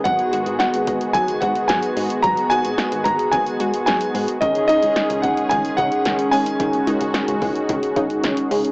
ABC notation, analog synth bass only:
X:1
M:4/4
L:1/16
Q:1/4=110
K:G#m
V:1 name="Analog synth bass" clef=bass
G,,, z G,,, G,,, z G,,, G,,, z G,,, z G,, z G,,, z G,, z | G,,, z G,,, G,,, z G,,, G,,, z G,,, z G,, z G,,, z G,, z | C,, z C,, C,, z C,, C,, z C,, z C, z C,, z C, z | C,, z C,, C,, z C,, C,, z C,, z C, z C,, z C, z |]